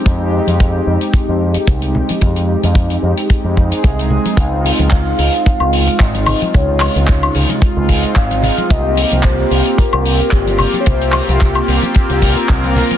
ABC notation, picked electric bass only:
X:1
M:4/4
L:1/16
Q:"Swing 16ths" 1/4=111
K:Fm
V:1 name="Picked electric bass" clef=bass
F,,2 z F,,2 z F,, z2 F,,2 z C,,2 z2 | F,,2 z F,,2 z F,, z2 F,,2 z C,,2 z2 | D,,2 z D,,2 z D,, z2 D,,2 z A,,,2 z2 | D,,2 z D,,2 z D,, z2 D,,2 z A,,,2 z2 |
C,,2 z C,,2 z C,, z2 C,,2 z G,,,2 z2 | C,,2 z C,,2 z C,, z2 C,,2 z C,,2 z2 |]